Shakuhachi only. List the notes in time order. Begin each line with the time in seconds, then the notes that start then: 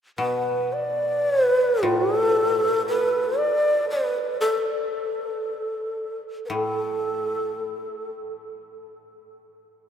0.18 B4
0.73 D5
1.46 B4
1.83 F4
2.18 A4
2.88 B4
3.38 D5
3.90 B4
4.40 A4
6.46 A4 B4